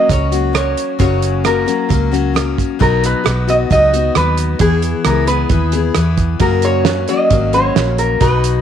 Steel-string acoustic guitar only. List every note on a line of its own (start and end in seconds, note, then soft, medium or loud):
0.09 0.32 F#3 medium
0.09 0.32 A#3 medium
0.09 0.31 C#4 medium
0.09 0.30 F#4 medium
0.32 0.52 F#3 soft
0.32 0.53 A#3 soft
0.32 0.53 C#4 soft
0.32 0.54 F#4 medium
0.53 0.99 F#3 soft
0.53 0.99 A#3 medium
0.53 0.99 C#4 medium
0.53 1.00 F#4 medium
0.99 1.44 F#2 medium
0.99 1.45 C#3 medium
0.99 1.43 F#3 medium
0.99 1.43 A#3 medium
0.99 1.44 C#4 medium
0.99 1.45 F#4 medium
1.44 1.67 F#3 medium
1.44 1.66 A#3 medium
1.44 1.66 C#4 medium
1.44 1.65 F#4 medium
1.66 1.87 F#3 soft
1.66 1.88 A#3 soft
1.66 1.89 C#4 soft
1.66 1.89 F#4 soft
1.89 2.12 F#3 medium
1.89 2.12 A#3 medium
1.89 2.11 C#4 medium
1.89 2.10 F#4 medium
2.11 2.33 F#3 soft
2.11 2.34 A#3 soft
2.11 2.34 C#4 medium
2.11 2.35 F#4 medium
2.34 2.78 F#3 medium
2.34 2.79 A#3 medium
2.34 2.80 C#4 medium
2.34 2.79 F#4 medium
2.79 3.25 B2 medium
2.79 3.23 F#3 medium
2.79 3.24 B3 medium
2.79 3.24 D#4 medium
2.79 3.25 F#4 medium
3.24 3.47 F#3 medium
3.24 3.48 B3 medium
3.24 3.48 D#4 medium
3.24 3.46 F#4 medium
3.48 3.69 B3 soft
3.48 3.71 D#4 soft
3.48 3.70 F#4 soft
3.70 3.93 F#3 medium
3.70 3.93 B3 medium
3.70 3.93 D#4 medium
3.70 3.92 F#4 medium
3.93 4.15 B3 soft
3.93 4.15 D#4 soft
3.93 4.16 F#4 soft
4.15 4.60 F#3 soft
4.15 4.60 B3 medium
4.15 4.61 D#4 soft
4.15 4.61 F#4 medium
4.60 5.04 E3 medium
4.60 5.05 B3 medium
4.60 5.06 E4 medium
4.60 5.06 G#4 medium
5.05 5.28 E3 medium
5.05 5.28 B3 medium
5.05 5.27 E4 medium
5.05 5.26 G#4 medium
5.28 5.50 B3 soft
5.28 5.51 E4 soft
5.28 5.50 G#4 soft
5.50 5.73 E3 medium
5.50 5.73 B3 medium
5.50 5.73 E4 medium
5.50 5.72 G#4 medium
5.73 5.94 B3 soft
5.73 5.95 E4 soft
5.73 5.96 G#4 medium
5.94 6.40 E3 medium
5.94 6.40 B3 medium
5.94 6.40 E4 medium
5.94 6.40 G#4 medium
6.40 6.85 F#2 medium
6.40 6.86 C#3 medium
6.40 6.84 F#3 medium
6.40 6.84 A#3 medium
6.40 6.86 C#4 medium
6.40 6.87 F#4 medium
6.85 7.08 F#3 medium
6.85 7.08 A#3 medium
6.85 7.08 C#4 medium
6.85 7.07 F#4 medium
7.08 7.29 F#3 soft
7.08 7.30 A#3 soft
7.08 7.30 C#4 soft
7.08 7.31 F#4 soft
7.30 7.53 F#3 medium
7.30 7.54 A#3 medium
7.30 7.53 C#4 medium
7.30 7.52 F#4 medium
7.53 7.75 F#3 soft
7.53 7.76 A#3 soft
7.53 7.76 C#4 medium
7.53 7.76 F#4 medium
7.76 8.21 F#3 medium
7.76 8.21 A#3 medium
7.76 8.21 C#4 soft
7.76 8.21 F#4 medium
8.20 8.61 B2 medium
8.20 8.61 F#3 medium
8.20 8.61 B3 medium
8.20 8.61 D#4 medium
8.20 8.61 F#4 medium